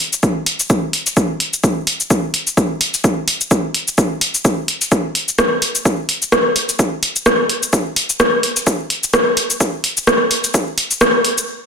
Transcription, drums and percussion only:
0.00 open hi-hat medium
0.13 shaker soft
0.23 kick loud
0.23 shaker soft
0.46 open hi-hat loud
0.60 shaker soft
0.70 kick loud
0.70 shaker soft
0.93 open hi-hat medium
1.07 open hi-hat soft
1.07 shaker medium
1.17 kick loud
1.17 shaker soft
1.40 open hi-hat medium
1.53 shaker soft
1.64 kick loud
1.64 shaker soft
1.87 open hi-hat medium
2.00 shaker soft
2.10 kick loud
2.10 shaker soft
2.34 open hi-hat loud
2.47 shaker soft
2.57 kick loud
2.57 shaker soft
2.81 open hi-hat medium
2.94 open hi-hat soft
2.94 shaker soft
3.04 kick loud
3.04 shaker soft
3.28 open hi-hat medium
3.41 shaker soft
3.51 kick loud
3.51 shaker soft
3.74 open hi-hat medium
3.88 shaker soft
3.98 kick loud
3.98 shaker soft
4.21 open hi-hat medium
4.35 shaker soft
4.45 kick loud
4.45 shaker soft
4.68 open hi-hat medium
4.82 open hi-hat soft
4.82 shaker soft
4.92 kick loud
4.92 shaker soft
5.15 open hi-hat medium
5.28 shaker soft
5.39 kick loud
5.39 cross-stick medium
5.39 shaker soft
5.62 open hi-hat medium
5.75 shaker soft
5.85 kick loud
5.85 shaker soft
6.09 open hi-hat medium
6.22 shaker soft
6.32 kick loud
6.32 cross-stick medium
6.32 shaker soft
6.56 open hi-hat medium
6.69 open hi-hat soft
6.69 shaker soft
6.79 kick loud
6.79 shaker soft
7.03 open hi-hat medium
7.16 shaker soft
7.26 kick loud
7.26 cross-stick medium
7.26 shaker soft
7.49 open hi-hat medium
7.63 shaker soft
7.73 kick loud
7.73 shaker soft
7.96 open hi-hat medium
8.10 shaker medium
8.20 kick loud
8.20 cross-stick medium
8.20 shaker soft
8.43 open hi-hat medium
8.57 open hi-hat soft
8.57 shaker medium
8.67 kick loud
8.67 shaker soft
8.90 open hi-hat medium
9.03 shaker medium
9.14 kick loud
9.14 cross-stick medium
9.14 shaker soft
9.37 open hi-hat medium
9.50 shaker medium
9.60 kick loud
9.60 shaker soft
9.84 open hi-hat medium
9.97 shaker medium
10.07 kick loud
10.07 cross-stick medium
10.07 shaker soft
10.31 open hi-hat medium
10.44 open hi-hat soft
10.44 shaker medium
10.54 kick loud
10.54 shaker soft
10.78 open hi-hat medium
10.91 shaker medium
11.01 kick loud
11.01 cross-stick loud
11.01 shaker soft
11.25 open hi-hat medium
11.38 shaker medium

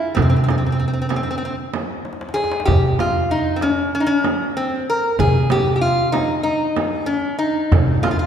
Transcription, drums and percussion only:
0.01 tombak ka soft
0.17 tombak dum medium
0.17 frame drum medium
0.33 tombak ka soft
0.49 tombak tek medium
0.49 frame drum medium
0.80 tombak ka soft
1.10 tombak tek medium
1.10 frame drum medium
1.28 tombak ka soft
1.43 tombak ka soft
1.74 tombak tek medium
1.74 frame drum medium
2.05 tombak tek medium
2.13 tombak ka medium
2.21 tombak tek medium
2.29 tombak ka medium
2.36 tombak tek medium
2.44 tombak ka medium
2.52 tombak tek medium
2.60 tombak ka medium
2.67 frame drum medium
2.67 tombak dum medium
2.84 tombak ka soft
2.99 tombak tek medium
2.99 frame drum medium
3.61 tombak tek medium
3.61 frame drum medium
4.24 tombak tek medium
4.24 frame drum medium
4.57 tombak ka soft
5.04 tombak ka soft
5.19 tombak dum medium
5.19 frame drum medium
5.35 tombak ka soft
5.50 tombak tek medium
5.50 frame drum medium
6.14 tombak tek medium
6.14 frame drum medium
6.76 tombak tek medium
6.76 frame drum medium
7.09 tombak ka soft
7.57 tombak ka soft
7.72 tombak dum loud
7.72 frame drum medium
7.88 tombak ka soft
8.04 tombak tek medium
8.04 frame drum medium

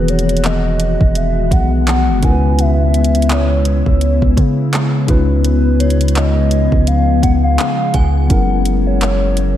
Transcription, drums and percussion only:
0.08 closed hi-hat medium
0.19 closed hi-hat medium
0.29 closed hi-hat medium
0.37 closed hi-hat medium
0.44 clap loud
0.44 closed hi-hat medium
0.80 closed hi-hat medium
1.01 kick medium
1.15 closed hi-hat medium
1.51 kick loud
1.51 closed hi-hat medium
1.87 clap loud
1.87 closed hi-hat medium
2.23 kick loud
2.23 closed hi-hat medium
2.59 closed hi-hat medium
2.94 closed hi-hat medium
3.04 closed hi-hat medium
3.15 closed hi-hat medium
3.22 closed hi-hat medium
3.30 clap loud
3.30 closed hi-hat medium
3.65 closed hi-hat medium
3.86 kick medium
4.01 closed hi-hat medium
4.22 kick medium
4.37 kick medium
4.37 closed hi-hat medium
4.73 clap loud
4.73 closed hi-hat medium
5.08 kick loud
5.08 closed hi-hat medium
5.45 closed hi-hat medium
5.80 closed hi-hat medium
5.90 closed hi-hat medium
6.01 closed hi-hat medium
6.08 closed hi-hat medium
6.15 clap loud
6.15 closed hi-hat medium
6.51 closed hi-hat medium
6.72 kick loud
6.87 closed hi-hat medium
7.23 kick medium
7.23 closed hi-hat medium
7.58 clap loud
7.58 closed hi-hat medium
7.94 kick medium
7.94 closed hi-hat medium
8.30 kick loud
8.30 closed hi-hat medium
8.65 closed hi-hat medium
9.01 clap loud
9.01 closed hi-hat medium
9.37 closed hi-hat medium

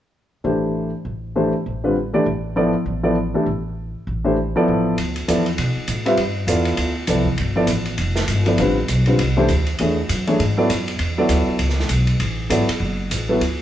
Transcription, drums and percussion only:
4.98 ride soft
5.16 ride soft
5.28 hi-hat pedal soft
5.28 ride medium
5.46 ride soft
5.58 ride medium
5.88 hi-hat pedal soft
5.88 ride medium
6.06 ride soft
6.17 ride soft
6.48 hi-hat pedal medium
6.48 ride medium
6.65 ride soft
6.77 ride medium
7.07 hi-hat pedal soft
7.07 ride medium
7.25 kick soft
7.38 ride soft
7.67 hi-hat pedal medium
7.67 ride medium
7.86 ride soft
7.98 ride medium
8.16 snare soft
8.28 hi-hat pedal soft
8.28 ride medium
8.46 ride soft
8.58 ride soft
8.88 hi-hat pedal medium
8.88 ride medium
9.06 ride soft
9.19 ride medium
9.48 hi-hat pedal medium
9.48 ride soft
9.66 ride soft
9.78 ride medium
10.09 hi-hat pedal soft
10.09 ride medium
10.27 ride soft
10.40 ride soft
10.70 hi-hat pedal soft
10.70 ride medium
10.88 ride soft
10.99 ride soft
11.29 hi-hat pedal medium
11.29 ride medium
11.59 ride medium
11.69 snare soft
11.80 snare soft
11.89 hi-hat pedal soft
11.89 ride medium
12.07 ride soft
12.20 ride medium
12.50 hi-hat pedal soft
12.50 ride medium
12.69 ride medium
13.11 hi-hat pedal medium
13.11 ride medium
13.41 ride medium

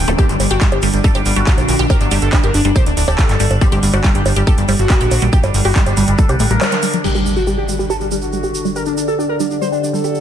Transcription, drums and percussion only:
0.07 closed hi-hat medium
0.07 shaker soft
0.19 kick loud
0.19 closed hi-hat medium
0.19 shaker soft
0.29 closed hi-hat medium
0.29 shaker soft
0.40 open hi-hat loud
0.40 high bongo soft
0.40 shaker loud
0.51 closed hi-hat medium
0.51 shaker soft
0.61 kick loud
0.61 clap loud
0.61 closed hi-hat medium
0.61 shaker medium
0.72 closed hi-hat medium
0.72 high bongo medium
0.82 open hi-hat loud
0.82 shaker medium
0.94 closed hi-hat medium
0.94 shaker soft
1.04 kick loud
1.04 closed hi-hat medium
1.04 shaker medium
1.15 closed hi-hat medium
1.15 high bongo soft
1.15 shaker soft
1.26 open hi-hat loud
1.26 shaker loud
1.36 closed hi-hat medium
1.36 shaker soft
1.47 kick loud
1.47 clap loud
1.47 closed hi-hat medium
1.47 shaker medium
1.58 closed hi-hat medium
1.58 high bongo soft
1.58 shaker soft
1.69 open hi-hat loud
1.69 shaker medium
1.79 closed hi-hat medium
1.79 shaker soft
1.90 kick loud
1.90 closed hi-hat medium
1.90 high bongo medium
1.90 shaker soft
2.01 closed hi-hat medium
2.01 shaker soft
2.11 open hi-hat loud
2.11 shaker medium
2.22 closed hi-hat medium
2.22 shaker soft
2.33 kick loud
2.33 clap loud
2.33 closed hi-hat medium
2.33 high bongo soft
2.33 shaker medium
2.44 closed hi-hat medium
2.54 open hi-hat loud
2.54 shaker medium
2.65 closed hi-hat medium
2.65 shaker soft
2.76 kick loud
2.76 closed hi-hat medium
2.76 high bongo soft
2.76 shaker medium
2.86 closed hi-hat medium
2.86 shaker soft
2.97 open hi-hat loud
2.97 shaker loud
3.08 closed hi-hat medium
3.08 high bongo medium
3.08 shaker soft
3.19 kick loud
3.19 clap loud
3.19 closed hi-hat medium
3.19 shaker medium
3.29 clap soft
3.29 closed hi-hat medium
3.29 shaker soft
3.40 open hi-hat loud
3.40 shaker medium
3.51 closed hi-hat medium
3.51 high bongo soft
3.51 shaker soft
3.61 kick loud
3.61 closed hi-hat medium
3.61 shaker soft
3.72 closed hi-hat medium
3.72 shaker soft
3.83 open hi-hat loud
3.83 shaker loud
3.94 closed hi-hat medium
3.94 high bongo soft
4.04 kick loud
4.04 clap loud
4.04 closed hi-hat medium
4.04 shaker soft
4.15 closed hi-hat medium
4.26 open hi-hat medium
4.26 high bongo medium
4.26 shaker medium
4.36 closed hi-hat medium
4.36 shaker soft
4.47 kick loud
4.47 closed hi-hat medium
4.47 shaker medium
4.58 closed hi-hat medium
4.58 shaker soft
4.68 open hi-hat loud
4.68 high bongo soft
4.68 shaker medium
4.79 closed hi-hat medium
4.79 shaker soft
4.90 kick loud
4.90 clap loud
4.90 closed hi-hat medium
4.90 shaker medium
5.01 closed hi-hat medium
5.01 shaker soft
5.11 open hi-hat loud
5.11 high bongo soft
5.11 shaker medium
5.22 closed hi-hat medium
5.22 shaker soft
5.33 kick loud
5.33 closed hi-hat medium
5.33 shaker medium
5.43 closed hi-hat medium
5.43 high bongo medium
5.43 shaker soft
5.54 open hi-hat loud
5.54 shaker loud
5.65 open hi-hat medium
5.65 shaker soft
5.76 kick loud
5.76 clap loud
5.76 shaker medium
5.86 closed hi-hat medium
5.86 high bongo soft
5.86 shaker soft
5.97 open hi-hat loud
5.97 shaker medium
6.08 closed hi-hat medium
6.08 shaker soft
6.18 kick loud
6.18 closed hi-hat medium
6.18 shaker medium
6.29 closed hi-hat medium
6.29 high bongo soft
6.29 shaker soft
6.40 open hi-hat loud
6.40 shaker medium
6.51 closed hi-hat medium
6.51 shaker soft
6.61 clap loud
6.61 closed hi-hat medium
6.61 high bongo medium
6.61 shaker medium
6.72 clap soft
6.72 closed hi-hat medium
6.72 shaker soft
6.82 open hi-hat loud
6.82 shaker loud
6.94 closed hi-hat medium
6.94 shaker soft
7.04 crash medium
7.04 shaker medium
7.15 shaker soft
7.26 shaker medium
7.36 shaker soft
7.47 shaker medium
7.69 shaker medium
7.80 shaker soft
7.90 shaker medium
8.01 shaker soft
8.11 shaker medium
8.22 shaker soft
8.33 shaker medium
8.43 shaker soft
8.55 shaker medium
8.65 shaker soft
8.76 shaker medium
8.86 shaker soft
8.97 shaker medium
9.08 shaker soft
9.20 shaker soft
9.40 shaker medium
9.51 shaker soft
9.62 shaker soft
9.73 shaker soft
9.84 shaker medium
9.94 shaker soft
10.04 shaker soft
10.15 shaker soft

